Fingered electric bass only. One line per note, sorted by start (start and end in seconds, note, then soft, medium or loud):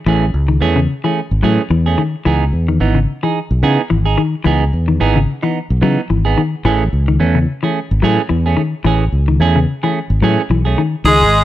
0.06 0.31 A1 loud
0.34 0.58 C#2 medium
0.61 0.86 E2 medium
1.31 1.42 G#1 medium
1.43 1.57 A2 medium
1.70 1.95 E2 medium
2.26 2.50 C#2 loud
2.53 2.77 E2 medium
2.80 3.05 G#1 medium
3.51 3.61 B1 medium
3.63 3.76 C#3 medium
3.91 4.15 G#1 medium
4.46 4.70 C#2 loud
4.73 4.97 E2 medium
5.01 5.25 G#1 medium
5.70 5.81 B1 medium
5.82 5.96 C#3 medium
6.10 6.35 G#1 medium
6.65 6.89 A1 loud
6.93 7.17 C#2 medium
7.20 7.45 E2 medium
7.91 8.02 G#1 medium
8.03 8.17 A2 medium
8.30 8.55 E2 medium
8.85 9.09 A1 loud
9.12 9.37 C#2 medium
9.40 9.64 E2 medium
10.10 10.21 G#1 medium
10.22 10.36 A2 medium
10.50 10.75 B1 medium
11.04 11.22 C#2 medium
11.21 11.44 G#1 medium